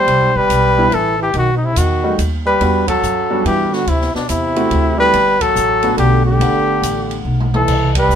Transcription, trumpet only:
0.00 0.38 C5 loud
0.37 0.96 B4 loud
0.94 1.20 A4 medium
1.22 1.35 G4 medium
1.38 1.55 F#4 medium
1.57 1.67 D#4 medium
1.65 1.79 E4 medium
1.78 2.15 F#4 medium
2.46 2.85 B4 medium
2.90 3.42 A4 medium
3.46 3.75 G4 medium
3.74 3.90 F#4 medium
3.89 4.15 E4 medium
4.16 4.29 D4 medium
4.30 4.95 E4 medium
5.00 5.43 B4 medium
5.41 5.98 A4 medium
5.99 6.24 G4 medium
6.26 7.21 G4 medium
7.55 7.93 A4 medium
7.98 8.15 B4 medium

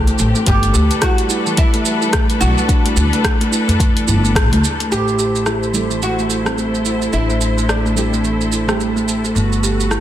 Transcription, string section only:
0.00 0.43 A3 medium
0.00 0.42 C4 medium
0.00 0.43 G4 medium
0.47 4.87 G3 medium
0.47 4.87 D4 medium
0.47 4.87 A4 medium
0.47 4.87 B4 medium
4.91 9.32 E4 medium
4.91 10.00 A4 medium
4.91 9.32 C5 medium
9.36 10.00 F#4 medium
9.36 10.00 B4 medium

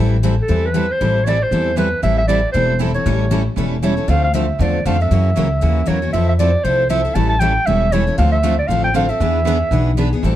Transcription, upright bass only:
0.00 0.39 A1 medium
0.49 0.90 E2 medium
1.01 1.42 A1 medium
1.51 1.92 E2 medium
2.03 2.44 A1 medium
2.54 2.95 E1 medium
3.06 3.47 A1 medium
3.57 3.98 E1 medium
4.08 4.49 D2 medium
4.59 4.81 E2 medium
4.85 5.07 F2 medium
5.11 5.31 F#2 medium
5.37 5.59 C#2 medium
5.62 5.84 D#2 medium
5.88 6.09 E2 medium
6.14 6.54 F2 medium
6.64 7.05 C2 medium
7.15 7.56 A1 medium
7.67 8.08 E1 medium
8.18 8.59 D2 loud
8.69 9.10 A1 medium
9.20 9.61 E2 medium
9.71 10.12 B1 medium
10.23 10.36 A1 medium

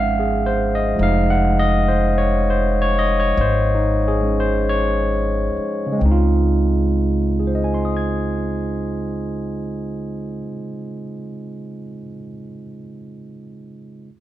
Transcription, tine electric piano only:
0.00 0.95 F3 soft
0.00 0.96 G#3 soft
0.00 0.98 C4 soft
0.00 0.99 C#4 soft
0.00 0.99 D#4 medium
0.00 6.02 E5 medium
0.00 0.25 F5 medium
0.00 1.30 F#5 medium
0.19 0.58 G#4 medium
0.46 0.72 C5 medium
0.75 0.95 D#5 medium
0.96 5.98 F3 medium
0.96 4.19 G#3 soft
1.01 3.74 D#4 medium
1.01 1.38 F5 medium
1.30 1.72 F#5 medium
1.59 1.86 D#5 medium
1.88 2.10 C5 medium
2.18 2.56 C#5 medium
2.50 2.92 C5 medium
2.82 2.88 C#5 medium
2.99 3.24 D#5 medium
3.20 3.34 C#5 medium
3.41 3.80 C5 medium
3.75 4.19 D#4 medium
4.08 4.35 G#4 medium
4.20 5.91 G#3 soft
4.20 6.00 C#4 soft
4.40 4.62 C5 medium
4.69 5.76 C#5 medium
5.87 10.30 C#3 medium
5.93 10.36 G#3 medium
5.99 10.43 C4 medium
6.05 10.49 D#4 medium
6.11 10.55 F4 medium
7.40 11.79 G#4 soft
7.47 11.87 C5 soft
7.55 11.95 D#5 soft
7.64 12.04 G#5 soft
7.74 12.14 C6 soft
7.85 12.25 D#6 soft
7.97 12.36 G#6 soft

